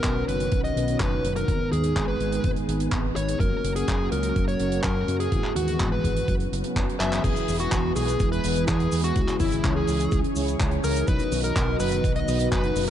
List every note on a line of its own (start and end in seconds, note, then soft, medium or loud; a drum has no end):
0.00 0.73 B2 medium
0.00 3.36 D#3 medium
0.00 0.73 B3 loud
0.00 1.46 B3 medium
0.00 0.73 C#4 medium
0.00 1.46 C#4 medium
0.00 0.73 D#4 medium
0.00 0.73 F#4 medium
0.00 1.46 F#4 medium
0.00 0.23 A#4 medium
0.00 clap loud
0.04 0.23 B1 loud
0.04 kick loud
0.04 closed hi-hat medium
0.28 0.47 F#1 loud
0.28 0.59 B4 medium
0.28 closed hi-hat medium
0.40 closed hi-hat medium
0.52 0.71 B1 medium
0.52 kick loud
0.52 closed hi-hat medium
0.64 0.95 D#5 medium
0.64 closed hi-hat soft
0.76 0.95 B1 medium
0.76 0.85 B2 medium
0.76 0.85 C#4 medium
0.76 0.85 D#4 medium
0.76 0.85 F#4 medium
0.76 0.85 B4 loud
0.76 closed hi-hat medium
0.88 1.45 B2 medium
0.88 1.45 C#4 medium
0.88 1.45 D#4 medium
0.88 1.45 F#4 medium
0.88 1.45 B4 loud
0.88 closed hi-hat medium
1.00 1.19 F#1 medium
1.00 1.31 B4 medium
1.00 kick loud
1.00 clap loud
1.00 closed hi-hat medium
1.24 1.43 F#1 medium
1.24 closed hi-hat medium
1.36 1.67 A#4 medium
1.36 closed hi-hat medium
1.48 1.58 G#1 medium
1.48 2.65 G#2 medium
1.48 3.38 G#3 medium
1.48 3.38 B3 medium
1.48 2.65 B3 medium
1.48 2.65 D#4 medium
1.48 3.38 G#4 medium
1.48 2.65 G#4 medium
1.48 2.65 B4 medium
1.48 kick loud
1.48 closed hi-hat medium
1.72 1.91 D#2 medium
1.72 2.03 G#4 medium
1.72 closed hi-hat medium
1.84 closed hi-hat medium
1.96 2.15 G#1 loud
1.96 kick loud
1.96 clap loud
1.96 closed hi-hat medium
2.08 2.50 B4 medium
2.20 2.39 G#1 medium
2.20 closed hi-hat medium
2.32 closed hi-hat medium
2.44 2.54 G#1 loud
2.44 kick loud
2.44 closed hi-hat medium
2.56 closed hi-hat soft
2.68 2.87 G#1 medium
2.68 3.37 G#2 medium
2.68 3.37 B3 medium
2.68 3.37 D#4 medium
2.68 3.37 G#4 medium
2.68 3.37 B4 loud
2.68 closed hi-hat medium
2.80 closed hi-hat medium
2.91 3.11 G#1 medium
2.91 kick loud
2.91 clap loud
2.91 closed hi-hat medium
3.16 3.35 G#1 medium
3.16 3.37 C#5 medium
3.16 closed hi-hat loud
3.28 closed hi-hat medium
3.40 3.50 F#1 loud
3.40 5.30 C#3 medium
3.40 5.30 F#3 medium
3.40 5.30 A#3 medium
3.40 4.57 A#3 medium
3.40 4.57 C#4 medium
3.40 7.20 F#4 medium
3.40 4.57 F#4 medium
3.40 3.71 A#4 loud
3.40 4.57 A#4 medium
3.40 kick loud
3.40 closed hi-hat medium
3.64 3.83 F#1 loud
3.64 closed hi-hat loud
3.76 4.07 G#4 medium
3.76 closed hi-hat medium
3.88 4.07 F#1 loud
3.88 kick loud
3.88 clap loud
3.88 closed hi-hat medium
4.12 4.31 C#2 loud
4.12 4.43 A#4 medium
4.12 closed hi-hat medium
4.23 closed hi-hat medium
4.36 4.55 F#1 medium
4.36 kick loud
4.36 closed hi-hat medium
4.48 4.79 C#5 medium
4.48 closed hi-hat medium
4.59 4.79 F#1 medium
4.59 4.69 A#3 medium
4.59 4.69 C#4 medium
4.59 4.69 F#4 medium
4.59 4.69 A#4 loud
4.59 closed hi-hat medium
4.72 5.29 A#3 loud
4.72 5.29 C#4 medium
4.72 5.29 F#4 medium
4.72 5.29 A#4 loud
4.72 closed hi-hat medium
4.84 5.03 F#2 medium
4.84 5.15 A#4 medium
4.84 kick loud
4.84 clap loud
4.84 closed hi-hat medium
5.08 5.27 F#2 loud
5.08 closed hi-hat medium
5.20 5.51 G#4 medium
5.20 closed hi-hat medium
5.32 5.42 G#1 medium
5.32 6.27 G#2 medium
5.32 6.27 E3 medium
5.32 6.27 G#3 medium
5.32 6.27 B3 medium
5.32 6.27 E4 medium
5.32 6.27 F#4 medium
5.32 6.27 G#4 medium
5.32 kick loud
5.32 closed hi-hat medium
5.44 clap soft
5.56 5.75 D#2 medium
5.56 5.87 F#4 medium
5.56 closed hi-hat loud
5.68 closed hi-hat medium
5.80 5.99 G#1 loud
5.80 kick loud
5.80 clap loud
5.80 closed hi-hat medium
5.92 6.34 B4 medium
6.04 6.23 G#1 medium
6.04 kick medium
6.04 closed hi-hat medium
6.17 closed hi-hat medium
6.28 6.47 F#1 medium
6.28 7.23 C#3 medium
6.28 7.23 F#3 medium
6.28 7.23 B3 medium
6.28 kick loud
6.28 closed hi-hat medium
6.40 closed hi-hat medium
6.52 6.62 F#1 loud
6.52 closed hi-hat medium
6.64 6.97 F#3 medium
6.64 6.97 B3 medium
6.64 6.97 C#4 medium
6.64 6.97 F#4 medium
6.64 6.97 B4 loud
6.64 closed hi-hat medium
6.76 6.86 F#1 medium
6.76 kick loud
6.76 clap loud
6.76 closed hi-hat medium
6.90 closed hi-hat medium
7.00 7.19 F#1 medium
7.00 7.21 E3 medium
7.00 7.21 B3 medium
7.00 7.21 C#4 medium
7.00 7.21 F#4 medium
7.00 7.21 B4 medium
7.00 7.21 E5 medium
7.00 clap medium
7.00 closed hi-hat loud
7.13 clap medium
7.13 closed hi-hat medium
7.24 7.34 E1 loud
7.24 8.41 E3 medium
7.24 11.04 E3 medium
7.24 11.04 G#3 medium
7.24 8.41 B3 medium
7.24 9.14 B3 medium
7.24 8.41 E4 medium
7.24 7.55 G#4 loud
7.24 8.41 G#4 medium
7.24 11.04 G#4 loud
7.24 8.41 B4 medium
7.24 kick loud
7.24 closed hi-hat medium
7.24 crash loud
7.24 cabasa medium
7.36 closed hi-hat medium
7.36 cabasa soft
7.48 7.67 E1 loud
7.48 open hi-hat loud
7.48 cabasa medium
7.59 7.91 F#4 medium
7.59 closed hi-hat medium
7.59 cabasa soft
7.72 7.91 E1 loud
7.72 kick loud
7.72 clap loud
7.72 closed hi-hat medium
7.72 cabasa medium
7.96 8.15 B1 loud
7.96 8.27 G#4 medium
7.96 open hi-hat loud
7.96 cabasa medium
8.08 closed hi-hat medium
8.08 cabasa medium
8.20 8.39 E1 medium
8.20 kick loud
8.20 closed hi-hat medium
8.20 cabasa medium
8.32 8.63 B4 medium
8.32 closed hi-hat medium
8.44 8.63 E1 medium
8.44 8.53 E3 medium
8.44 8.53 B3 medium
8.44 8.53 E4 medium
8.44 8.53 G#4 medium
8.44 8.53 B4 loud
8.44 open hi-hat loud
8.44 cabasa medium
8.56 9.13 E3 loud
8.56 9.13 B3 medium
8.56 9.13 E4 medium
8.56 9.13 G#4 medium
8.56 9.13 B4 loud
8.56 closed hi-hat medium
8.56 cabasa soft
8.68 8.87 E2 medium
8.68 8.99 G#4 loud
8.68 kick loud
8.68 clap loud
8.68 closed hi-hat loud
8.68 cabasa medium
8.80 closed hi-hat medium
8.92 9.11 E2 medium
8.92 open hi-hat loud
8.92 cabasa medium
9.04 9.35 F#4 medium
9.04 closed hi-hat medium
9.04 cabasa medium
9.16 9.26 C#2 medium
9.16 10.33 C#3 medium
9.16 10.33 C#4 medium
9.16 11.06 C#4 medium
9.16 10.33 E4 medium
9.16 10.33 G#4 medium
9.16 10.33 C#5 medium
9.16 kick loud
9.16 closed hi-hat medium
9.16 cabasa medium
9.28 clap soft
9.28 closed hi-hat medium
9.28 cabasa soft
9.40 9.59 G#1 medium
9.40 9.71 E4 loud
9.40 kick medium
9.40 open hi-hat loud
9.40 cabasa medium
9.52 closed hi-hat medium
9.52 cabasa medium
9.64 9.83 C#2 loud
9.64 kick loud
9.64 clap loud
9.64 closed hi-hat medium
9.64 cabasa medium
9.76 10.18 G#4 medium
9.87 10.07 C#2 medium
9.87 open hi-hat loud
9.87 cabasa medium
10.00 closed hi-hat medium
10.00 cabasa soft
10.12 10.22 C#2 loud
10.12 kick loud
10.12 closed hi-hat medium
10.12 cabasa medium
10.24 closed hi-hat medium
10.36 10.55 C#2 medium
10.36 11.05 C#3 medium
10.36 11.05 C#4 medium
10.36 11.05 E4 medium
10.36 11.05 G#4 medium
10.36 11.05 C#5 loud
10.36 open hi-hat loud
10.36 cabasa medium
10.48 closed hi-hat medium
10.48 cabasa soft
10.60 10.79 C#2 medium
10.60 kick loud
10.60 clap loud
10.60 closed hi-hat loud
10.60 cabasa medium
10.71 closed hi-hat medium
10.84 11.03 C#2 loud
10.84 11.05 A#4 medium
10.84 open hi-hat loud
10.84 cabasa medium
10.96 closed hi-hat medium
10.96 cabasa soft
11.08 11.18 B1 loud
11.08 12.25 B2 medium
11.08 12.90 D#3 medium
11.08 12.90 F#3 medium
11.08 12.25 B3 medium
11.08 12.90 B3 medium
11.08 12.25 D#4 medium
11.08 12.25 F#4 medium
11.08 12.90 F#4 medium
11.08 11.39 B4 loud
11.08 12.25 D#5 loud
11.08 kick loud
11.08 closed hi-hat medium
11.08 cabasa medium
11.19 closed hi-hat medium
11.19 cabasa soft
11.32 11.51 B1 loud
11.32 open hi-hat loud
11.32 cabasa medium
11.44 11.75 A#4 loud
11.44 closed hi-hat medium
11.44 cabasa soft
11.56 11.75 B1 loud
11.56 kick loud
11.56 clap loud
11.56 closed hi-hat medium
11.56 cabasa medium
11.80 11.99 F#1 loud
11.80 12.11 B4 medium
11.80 open hi-hat loud
11.80 cabasa medium
11.92 closed hi-hat medium
11.92 cabasa soft
12.04 12.23 B1 medium
12.04 kick loud
12.04 closed hi-hat medium
12.04 cabasa medium
12.16 12.47 D#5 medium
12.16 closed hi-hat medium
12.28 12.47 B1 medium
12.28 12.37 B2 medium
12.28 12.37 B3 medium
12.28 12.37 D#4 medium
12.28 12.37 F#4 medium
12.28 12.37 B4 loud
12.28 open hi-hat loud
12.28 cabasa medium
12.39 12.90 B2 loud
12.39 12.90 B3 medium
12.39 12.90 D#4 medium
12.39 12.90 F#4 medium
12.39 12.90 B4 loud
12.39 closed hi-hat medium
12.39 cabasa soft
12.52 12.71 F#1 medium
12.52 12.83 B4 loud
12.52 kick loud
12.52 clap loud
12.52 closed hi-hat medium
12.52 cabasa medium
12.64 closed hi-hat soft
12.76 12.90 F#1 medium
12.76 open hi-hat loud
12.76 cabasa medium